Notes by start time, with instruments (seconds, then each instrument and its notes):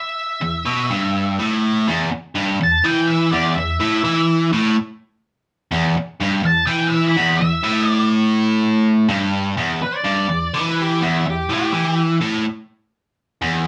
Already playing: lead electric guitar E5
0.42 overdriven electric guitar E2
0.65 overdriven electric guitar B2
0.90 overdriven electric guitar G2
1.39 overdriven electric guitar A2
1.88 overdriven electric guitar E2
2.11 muted overdriven electric guitar stroke
2.35 overdriven electric guitar G2
2.61 overdriven electric guitar E2, lead electric guitar A5
2.84 overdriven electric guitar E3, lead electric guitar G5
3.07 lead electric guitar E5
3.31 overdriven electric guitar E2, lead electric guitar D5
3.55 overdriven electric guitar E2, lead electric guitar E5
3.80 overdriven electric guitar A2
4.04 overdriven electric guitar E3
4.53 overdriven electric guitar A2
5.71 overdriven electric guitar E2
5.97 muted overdriven electric guitar stroke
6.20 overdriven electric guitar G2
6.43 overdriven electric guitar E2, lead electric guitar A5
6.66 overdriven electric guitar E3, lead electric guitar G5
6.87 lead electric guitar E5
7.08 lead electric guitar B5
7.17 overdriven electric guitar E2
7.36 lead electric guitar E5
7.42 overdriven electric guitar E2
7.64 overdriven electric guitar A2
7.88 lead electric guitar D5
9.09 overdriven electric guitar G2
9.57 overdriven electric guitar E2
9.82 lead electric guitar B4, muted overdriven electric guitar stroke
9.96 lead electric guitar D5
10.05 overdriven electric guitar G2
10.29 overdriven electric guitar E2
10.54 overdriven electric guitar E3
10.69 lead electric guitar B4
10.82 lead electric guitar G4
11.01 overdriven electric guitar E2, lead electric guitar E4
11.26 overdriven electric guitar E2, lead electric guitar G4
11.49 overdriven electric guitar A2
11.53 lead electric guitar G4
11.73 overdriven electric guitar E3
12.21 overdriven electric guitar A2
13.42 overdriven electric guitar E2